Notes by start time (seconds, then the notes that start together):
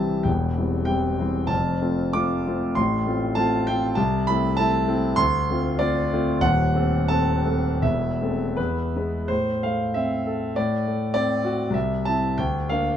Already playing: C2 C3 E3 G3 C4 E5 A5
0.23 E1 E2 G5
0.57 E3 G3 C4
0.85 E3 G3 C4 G5
1.19 E3 G3 C4
1.47 F1 F2 A5
1.81 A3 C4 F4
2.13 A3 C4 F4 D6
2.47 A3 C4 F4
2.75 A1 A2 C6
3.06 A3 C4 F4
3.35 A3 C4 F4 A5
3.67 A3 C4 F4 G5
3.95 C2 A5
4.27 A3 C4 E4 B5
4.57 A3 C4 E4 A5
4.88 A3 C4 E4
5.16 D2 C6
5.50 A3 C4 F4
5.79 A3 C4 F4 D5
6.13 A3 C4 F4
6.41 D#1 D#2 F#5
6.75 A3 C4 A4
7.08 A3 C4 A4 A5
7.45 A3 C4 A4
7.82 E1 E2 E5
8.22 A3 C4 A4
8.57 E2 B4
8.96 G#3 B3 B4
9.28 A2 C5
9.63 A3 F5
9.94 C4 E5
10.26 A4
10.56 A2 D5
10.87 A3
11.14 C4 D5
11.45 F#4
11.70 C2 E5
12.05 C4 E4 A5
12.38 D2 G5
12.69 A#3 D4 F5